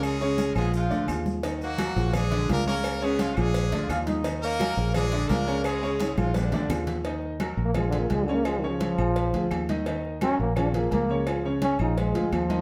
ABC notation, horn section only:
X:1
M:4/4
L:1/8
Q:1/4=171
K:Bbphr
V:1 name="Horn section"
[A,DA]3 [A,CA] [F,A,F]3 z | z [G,B,G]3 [A,=DA]2 [B,DB] [B,_DB]- | [B,DB] [A,CA] [F,A,F] [A,=DA]4 z | z [B,DB]3 [A,=DA]2 [B,DB]2 |
[A,DA]3 [F,A,F] [=D,F,=D]3 z | z8 | z8 | z8 |
z8 |]